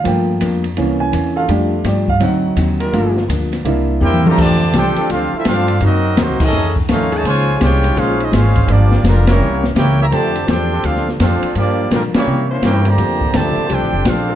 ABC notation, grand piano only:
X:1
M:4/4
L:1/8
Q:"Swing" 1/4=167
K:F
V:1 name="Grand piano"
g2 z3 _a2 f- | f2 d f ^f2 z2 | z8 | z8 |
z8 | z8 | z8 | z8 |
z8 | z8 |]
V:2 name="Grand piano"
[F,A,B,]3 z [E,B,_D]4 | [G,A,D]3 z [^F,C_E]4 | [A,B,F] z3 [B,DE]4 | z8 |
z8 | z8 | z8 | z8 |
z8 | z8 |]